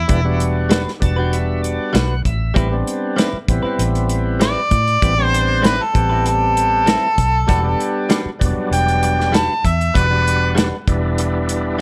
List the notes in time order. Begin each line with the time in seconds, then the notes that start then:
Already playing: E4
0.08 E1 G3 B3 D4 E4, kick, closed hi-hat
0.24 G3 B3 D4 F#4
0.40 closed hi-hat
0.69 G3 D4 F#4 B4, snare, closed hi-hat
0.88 snare
1.00 E1 G3 B3 D4 F#4 A5, kick, closed hi-hat
1.16 D4 F#4 B4 G5
1.33 E5, closed hi-hat
1.62 D5, closed hi-hat
1.93 B1 G3 D4 F#4 B4 F#5, snare, closed hi-hat
2.25 A1 E5, kick, closed hi-hat
2.54 A1 G3 B3 C4 E4 B4, kick, closed hi-hat
2.71 G3 B3 C4 D4
2.87 closed hi-hat
3.17 G3 C4 E4 B4, snare, closed hi-hat
3.33 muted fingered electric bass stroke
3.48 A1 G3 B3 C4 E4, kick, closed hi-hat
3.63 C4 E4 B4
3.79 A1, closed hi-hat
3.95 closed hi-hat
4.09 closed hi-hat
4.40 G3 C4 E4 B4 D5, snare, closed hi-hat
4.71 A2, kick, closed hi-hat
4.88 closed hi-hat
5.02 A1 G3 B3 C4 E4, kick, closed hi-hat
5.18 G3 B3 C4 D4
5.25 C5
5.34 closed hi-hat
5.62 G3 C4 E4 B4, snare, closed hi-hat
5.67 B4
5.83 A4
5.93 A1 G3 B3 C4 G4, kick, closed hi-hat
6.10 C4 E4 B4
6.26 A4, closed hi-hat
6.57 closed hi-hat
6.86 G3 C4 E4 B4, snare, closed hi-hat
7.18 B1, kick, closed hi-hat
7.47 E1 G3 B3 D4 F#4 B4, kick, closed hi-hat
7.63 G3 B3 D4 G4
7.80 closed hi-hat
8.09 G3 D4 F#4 B4, snare, closed hi-hat
8.26 muted fingered electric bass stroke
8.39 E1 F#3 G3 B3 D4, kick, closed hi-hat
8.57 muted fingered electric bass stroke
8.71 E1 G5, closed hi-hat
8.88 closed hi-hat
9.03 closed hi-hat
9.20 snare
9.32 G3 D4 F#4 B4 A5, snare, closed hi-hat
9.64 E2 E5, kick, closed hi-hat
9.81 closed hi-hat
9.94 E1 G3 B3 D4 F#4 B4, kick, closed hi-hat
10.10 G3 B3 D4 F#4
10.27 closed hi-hat
10.55 G3 D4 F#4 B4, snare, closed hi-hat
10.87 E1 G3 B3 D4 E4, kick, closed hi-hat
11.18 closed hi-hat
11.49 closed hi-hat